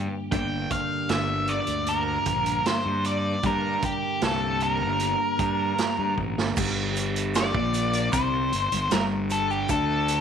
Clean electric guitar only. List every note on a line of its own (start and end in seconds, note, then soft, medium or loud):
0.00 0.31 G2 medium
0.00 0.31 D3 medium
0.00 0.32 G3 medium
0.00 0.32 A#3 medium
0.00 0.33 D4 medium
0.00 0.34 G4 medium
0.31 3.42 G2 medium
0.31 3.42 D3 medium
0.31 3.44 G3 medium
0.31 3.45 A#3 medium
0.31 3.45 D4 medium
0.31 3.46 G4 medium
3.43 6.54 G2 medium
3.43 6.54 D3 medium
3.43 6.54 G3 medium
3.43 6.55 A#3 medium
3.43 6.55 D4 medium
3.43 6.55 G4 loud
6.57 7.53 G2 medium
6.57 7.54 G3 medium
7.54 8.12 A#2 medium
7.54 8.12 A#3 medium
8.12 8.50 C3 medium
8.12 8.51 C4 loud
8.53 8.71 G2 medium
8.73 8.90 G2 medium
8.91 9.68 G2 medium
8.91 9.68 G3 medium
9.69 10.21 D3 loud
9.69 10.21 D4 loud